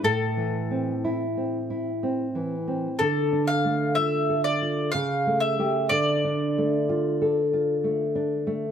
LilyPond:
<<
  \new Staff \with { instrumentName = "Mandolin" } { \time 3/4 \key d \dorian \tempo 4 = 62 a'2. | a'8 f''8 e''8 d''8 f''8 e''8 | d''2. | }
  \new Staff \with { instrumentName = "Nylon-string guitar" } { \time 3/4 \key d \dorian \tuplet 3/2 { a,8 e8 c'8 e'8 c'8 e'8 c'8 e8 c'8 } | \tuplet 3/2 { d8 d'8 a8 f'8 a'8 f'8 cis8 a8 <a g'>8 } | \tuplet 3/2 { d8 d'8 a8 f'8 a'8 f'8 a8 d'8 a8 } | }
>>